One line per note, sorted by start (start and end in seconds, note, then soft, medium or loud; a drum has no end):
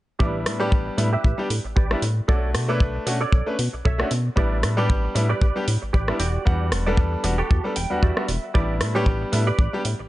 0.19 0.47 A1 medium
0.19 0.57 G3 medium
0.19 0.57 B3 medium
0.19 0.57 D4 medium
0.19 0.57 E4 medium
0.19 0.40 G4 medium
0.19 0.40 B4 medium
0.19 0.40 D5 loud
0.19 kick loud
0.46 0.73 A2 medium
0.46 cross-stick medium
0.46 open hi-hat medium
0.59 0.95 G3 medium
0.59 0.95 B3 medium
0.59 0.95 D4 medium
0.59 0.72 G4 medium
0.59 0.95 G4 loud
0.59 0.72 B4 medium
0.59 0.72 D5 medium
0.72 0.91 A1 medium
0.72 kick loud
0.86 muted clean electric guitar stroke soft
0.97 1.17 A2 medium
0.97 1.07 G3 medium
0.97 1.07 B3 medium
0.97 1.07 D4 medium
0.97 1.07 E4 medium
0.97 muted clean electric guitar stroke medium
0.97 open hi-hat medium
1.13 1.39 G4 loud
1.13 1.39 B4 medium
1.13 1.39 E5 loud
1.24 1.34 A1 medium
1.24 kick loud
1.38 1.46 G3 medium
1.38 1.46 B3 medium
1.38 1.46 D4 medium
1.38 1.46 G4 medium
1.50 1.60 A2 medium
1.50 open hi-hat medium
1.64 1.74 A1 soft
1.64 muted clean electric guitar stroke soft
1.76 1.95 A1 medium
1.76 2.02 G4 medium
1.76 2.02 B4 medium
1.76 2.02 D5 medium
1.76 kick loud
1.91 1.98 G3 medium
1.91 1.98 B3 medium
1.91 1.98 D4 medium
1.91 1.99 E4 medium
1.91 cross-stick medium
2.02 2.21 A2 medium
2.02 open hi-hat medium
2.28 2.56 B1 loud
2.28 2.65 A3 medium
2.28 2.66 D4 medium
2.28 2.66 F#4 medium
2.28 2.49 A4 medium
2.28 2.49 C#5 medium
2.28 2.49 D5 loud
2.28 kick loud
2.54 2.82 B2 medium
2.54 cross-stick medium
2.54 open hi-hat medium
2.68 3.04 A3 medium
2.68 3.04 D4 medium
2.68 2.81 A4 medium
2.68 3.04 B4 loud
2.68 2.81 C#5 medium
2.68 2.81 D5 medium
2.80 2.99 B1 medium
2.80 kick loud
2.95 muted clean electric guitar stroke soft
3.06 3.25 B2 medium
3.06 3.16 A3 medium
3.06 3.16 C#4 medium
3.06 3.16 D4 medium
3.06 3.16 F#4 medium
3.06 muted clean electric guitar stroke medium
3.06 open hi-hat loud
3.21 3.47 A4 loud
3.21 3.47 C#5 medium
3.21 3.47 D5 loud
3.32 3.43 B1 medium
3.32 kick loud
3.47 3.54 A3 medium
3.47 3.54 C#4 medium
3.47 3.55 D4 medium
3.47 3.55 B4 medium
3.59 3.69 B2 medium
3.59 open hi-hat medium
3.73 3.83 B1 soft
3.73 muted clean electric guitar stroke soft
3.85 4.04 B1 medium
3.85 4.11 A4 medium
3.85 4.11 C#5 medium
3.85 4.11 E5 medium
3.85 kick loud
3.98 4.06 A3 medium
3.98 4.07 C#4 medium
3.98 4.07 D4 medium
3.98 4.07 F#4 medium
3.98 cross-stick medium
4.11 4.30 B2 medium
4.11 open hi-hat loud
4.36 4.65 A1 medium
4.36 4.74 G3 medium
4.36 4.74 B3 medium
4.36 4.74 D4 medium
4.36 4.74 E4 medium
4.36 4.58 G4 loud
4.36 4.58 B4 medium
4.36 4.58 D5 loud
4.36 kick loud
4.63 4.91 A2 medium
4.63 cross-stick medium
4.63 open hi-hat medium
4.77 5.12 G3 medium
4.77 5.12 B3 medium
4.77 5.13 D4 medium
4.77 5.13 G4 loud
4.77 4.89 G4 medium
4.77 4.90 B4 medium
4.77 4.90 D5 medium
4.90 5.08 A1 medium
4.90 kick loud
5.04 muted clean electric guitar stroke soft
5.15 5.34 A2 medium
5.15 5.25 G3 medium
5.15 5.25 B3 medium
5.15 5.25 D4 medium
5.15 5.25 E4 medium
5.15 muted clean electric guitar stroke medium
5.15 open hi-hat loud
5.29 5.56 G4 loud
5.29 5.56 B4 medium
5.29 5.56 D5 loud
5.42 5.51 A1 medium
5.42 kick loud
5.56 5.63 G3 medium
5.56 5.63 B3 medium
5.56 5.63 D4 medium
5.56 5.64 G4 medium
5.68 5.78 A2 medium
5.68 open hi-hat medium
5.82 5.92 A1 soft
5.82 muted clean electric guitar stroke soft
5.93 6.13 A1 medium
5.93 6.18 G4 medium
5.93 6.19 B4 medium
5.93 6.18 D5 medium
5.93 kick loud
6.08 6.15 G3 medium
6.08 6.15 B3 medium
6.08 6.16 D4 medium
6.08 6.16 E4 medium
6.08 cross-stick medium
6.19 6.39 E1 medium
6.19 6.72 F#4 medium
6.19 6.72 G4 medium
6.19 6.72 D5 medium
6.19 open hi-hat loud
6.45 6.73 E2 medium
6.45 6.83 G3 medium
6.45 6.83 B3 medium
6.45 6.83 D4 medium
6.45 6.83 F#5 medium
6.45 kick loud
6.72 6.99 E1 medium
6.72 cross-stick medium
6.72 open hi-hat medium
6.86 7.22 G3 medium
6.86 7.22 B3 medium
6.86 7.22 D4 medium
6.86 6.98 F#4 medium
6.86 6.98 G4 medium
6.86 7.22 A4 loud
6.86 6.98 D5 medium
6.97 7.17 E2 medium
6.97 kick loud
7.12 muted clean electric guitar stroke soft
7.24 7.43 E1 medium
7.24 7.33 G3 medium
7.24 7.33 B3 medium
7.24 7.34 D4 medium
7.24 7.34 F#4 medium
7.24 muted clean electric guitar stroke medium
7.24 open hi-hat loud
7.38 7.65 F#4 medium
7.38 7.65 G4 loud
7.38 7.65 A4 loud
7.51 7.61 E2 medium
7.51 kick loud
7.64 7.72 G3 medium
7.64 7.72 B3 medium
7.64 7.72 D4 medium
7.64 7.72 A4 medium
7.76 7.86 E1 medium
7.76 8.01 G5 medium
7.76 open hi-hat medium
7.90 8.00 E2 soft
7.90 8.13 G3 medium
7.90 8.13 B3 medium
7.90 8.14 D4 medium
7.90 8.14 F#4 medium
7.90 muted clean electric guitar stroke soft
8.02 8.12 E2 medium
8.02 8.29 F#4 medium
8.02 8.29 G4 medium
8.02 8.29 D5 medium
8.02 8.51 E5 medium
8.02 kick loud
8.17 8.24 G3 medium
8.17 8.24 B3 medium
8.17 8.25 D4 medium
8.17 8.25 F#4 medium
8.17 cross-stick medium
8.28 8.38 E1 medium
8.28 open hi-hat loud
8.54 8.82 A1 loud
8.54 8.92 G3 medium
8.54 8.92 B3 medium
8.54 8.92 D4 medium
8.54 8.92 E4 medium
8.54 8.75 G4 loud
8.54 8.75 B4 medium
8.54 8.75 D5 loud
8.54 kick loud
8.81 9.08 A2 loud
8.81 cross-stick medium
8.81 open hi-hat medium
8.95 9.30 G3 medium
8.95 9.30 B3 medium
8.95 9.30 D4 medium
8.95 9.07 G4 medium
8.95 9.30 G4 loud
8.95 9.07 B4 medium
8.95 9.07 C#5 medium
9.06 9.25 A1 medium
9.06 kick loud
9.21 muted clean electric guitar stroke soft
9.32 9.52 A2 medium
9.32 9.42 G3 medium
9.32 9.42 B3 medium
9.32 9.42 D4 medium
9.32 9.43 E4 medium
9.32 muted clean electric guitar stroke medium
9.32 open hi-hat medium
9.47 9.73 G4 medium
9.47 9.73 B4 medium
9.47 9.73 D5 loud
9.59 9.69 A1 medium
9.59 kick loud
9.73 9.81 G3 medium
9.73 9.81 B3 medium
9.73 9.81 D4 medium
9.73 9.81 G4 medium
9.85 9.95 A2 medium
9.85 open hi-hat medium
9.99 10.09 A1 soft
9.99 muted clean electric guitar stroke soft